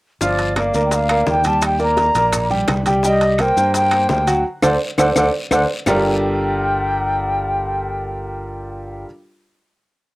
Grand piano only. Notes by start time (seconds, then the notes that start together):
0.21 F3 F4 F5
0.57 A#3 A#4 D5
0.75 A#3 A#4 D5
1.10 A#3 A#4 D5
1.45 G3 G4 G5
1.79 A#3 A#4 D5
2.16 A#3 A#4 D5
2.50 G3 G4 G5
2.87 G3 G4 G5
3.04 G3 G4 G5
3.40 A#3 A#4 C5
3.57 A#3 A#4 C5
3.93 A#3 A#4 C5
4.27 F#3 F#4 F#5
4.63 A4 C5 D5
4.99 A4 C5 D5
5.17 A4 C5 D5
5.52 A4 C5 D5
5.87 G3 D4 F4 G4 A4 A#4